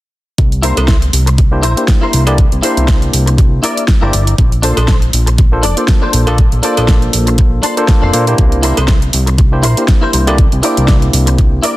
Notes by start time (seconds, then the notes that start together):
0.38 C2, kick, closed hi-hat
0.52 closed hi-hat
0.62 A#3 D4 E4 G4 A#4 C5, open hi-hat
0.77 C2, closed hi-hat, cowbell
0.88 kick, snare, closed hi-hat
1.02 closed hi-hat
1.13 C2, open hi-hat
1.26 muted clean electric guitar stroke, closed hi-hat
1.38 muted clean electric guitar stroke, kick, closed hi-hat
1.51 A#3 D4 E4 G4 C5
1.62 A#1 E4 A#4 C5, open hi-hat
1.77 A#3 D4 E4 G4 C5, closed hi-hat
1.88 kick, snare, closed hi-hat
2.01 E4 A#4 C5
2.13 C2, open hi-hat
2.27 A#3 D4 E4 G4 D5, closed hi-hat, cowbell
2.38 kick, closed hi-hat
2.52 C2, closed hi-hat
2.62 A#3 D4 E4 G4 A#4 C5, open hi-hat
2.77 C2, closed hi-hat
2.88 kick, snare, closed hi-hat
3.02 closed hi-hat
3.13 C2, open hi-hat
3.26 muted clean electric guitar stroke, closed hi-hat
3.38 muted clean electric guitar stroke, kick, closed hi-hat
3.63 E4 A#4 D5, open hi-hat
3.77 closed hi-hat
3.88 kick, snare, closed hi-hat
4.01 G1 A#3 D4 E4 G4 A#4 C5 D5
4.13 G1, open hi-hat
4.27 closed hi-hat
4.38 A#1, kick, closed hi-hat
4.52 closed hi-hat
4.62 A#3 D4 F4 A4 C5, open hi-hat
4.77 A#1, closed hi-hat, cowbell
4.88 kick, snare, closed hi-hat
5.02 closed hi-hat
5.13 A#1, open hi-hat
5.26 muted clean electric guitar stroke, closed hi-hat
5.38 muted clean electric guitar stroke, kick, closed hi-hat
5.52 A#3 D4 F4 A4 C5
5.63 F1 D4 A4 D5, open hi-hat
5.77 A#3 D4 F4 A4 C5, closed hi-hat
5.88 kick, snare, closed hi-hat
6.02 D4 A4 C5
6.13 A#1, open hi-hat
6.27 A#3 D4 F4 A4 D5, closed hi-hat, cowbell
6.38 kick, closed hi-hat
6.52 A#1, closed hi-hat
6.63 A#3 D4 F4 A4 C5 D5, open hi-hat
6.77 A#1, closed hi-hat, cowbell
6.88 kick, snare, closed hi-hat
7.02 closed hi-hat
7.13 A#1, open hi-hat
7.27 muted clean electric guitar stroke, closed hi-hat
7.38 muted clean electric guitar stroke, kick, closed hi-hat
7.63 D4 A4 C5, open hi-hat
7.77 A#3 D4 F4 A4 C5, closed hi-hat
7.88 kick, snare, closed hi-hat
8.02 F1 D4 A4 C5
8.13 A#2 A#3 D4 F4 A4 C5, open hi-hat
8.27 A#3 D4 E4 G4 C5, closed hi-hat
8.38 C2, kick, closed hi-hat
8.52 closed hi-hat
8.63 A#3 D4 E4 G4 A#4 C5, open hi-hat
8.77 C2, closed hi-hat, cowbell
8.88 kick, snare, closed hi-hat
9.02 closed hi-hat
9.13 C2, open hi-hat
9.26 muted clean electric guitar stroke, closed hi-hat
9.38 muted clean electric guitar stroke, kick, closed hi-hat
9.52 A#3 D4 E4 G4 C5
9.63 A#1 E4 A#4 C5, open hi-hat
9.77 A#3 D4 E4 G4 C5, closed hi-hat
9.88 kick, snare, closed hi-hat
10.01 E4 A#4 C5
10.13 C2, open hi-hat
10.27 A#3 D4 E4 G4 D5, closed hi-hat, cowbell
10.38 kick, closed hi-hat
10.52 C2, closed hi-hat
10.62 A#3 D4 E4 G4 A#4 C5 D5, open hi-hat
10.77 C2, closed hi-hat
10.88 kick, snare, closed hi-hat
11.02 closed hi-hat
11.13 C2, open hi-hat
11.26 muted clean electric guitar stroke, closed hi-hat
11.38 muted clean electric guitar stroke, kick, closed hi-hat
11.63 E4 A#4 D5, open hi-hat